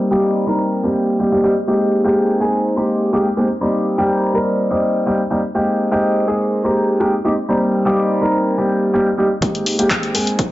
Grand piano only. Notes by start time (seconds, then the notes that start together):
0.11 G3 A#3 C4 D#4 G4
0.46 G3 A#3 C4 D#4 A#4
0.83 G3 A#3 C4 D#4 G4
1.19 G3 A#3 C4 D#4 G4
1.32 G3 A#3 C4 D#4 G4
1.43 G3 A#3 C4 D#4 G4
1.67 G#3 A#3 C4 D#4 G4
2.04 G#3 A#3 C4 D#4 G4
2.40 G#3 A#3 C4 D#4 G#4
2.77 G#3 A#3 C4 D#4 G4
3.13 G#3 A#3 C4 D#4 G4
3.37 G#3 A#3 C4 D#4 G4
3.61 G3 A#3 C4 D#4 G4
3.98 G3 A#3 C4 D#4 G4
4.33 G3 A#3 C4 D#4 A#4
4.70 G3 A#3 C4 D#4 G4
5.06 G3 A#3 C4 D#4 G4
5.30 G3 A#3 C4 D#4 G4
5.55 G#3 A#3 C4 D#4 G4
5.91 G#3 A#3 C4 D#4 G4
6.27 G#3 A#3 C4 D#4 G#4
6.64 G#3 A#3 C4 D#4 G4
7.00 G#3 A#3 C4 D#4 G4
7.24 G#3 A#3 C4 D#4 G4
7.48 G3 A#3 C4 D#4 G4
7.85 G3 A#3 C4 D#4 G4
8.21 G3 A#3 C4 D#4 A#4
8.58 G3 A#3 C4 D#4 G4
8.93 G3 A#3 C4 D#4 G4
9.17 G3 A#3 C4 D#4 G4
9.41 G#3 A#3 C4 D#4 G4
9.79 G#3 A#3 C4 D#4 G4
10.14 G#3 A#3 C4 D#4 G#4